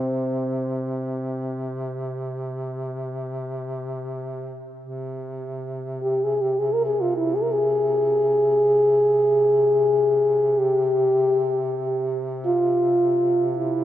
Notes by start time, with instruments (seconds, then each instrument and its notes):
Already playing: duduk C3, french horn C4
4.80 duduk C3
6.02 french horn G4
6.24 french horn G#4
6.41 french horn G4
6.59 french horn G#4
6.73 french horn A#4
6.86 french horn G#4
7.01 french horn F4
7.17 french horn E4
7.35 french horn G#4
7.42 french horn A#4
7.52 french horn G#4
10.58 french horn G4
12.45 french horn F4
13.57 french horn E4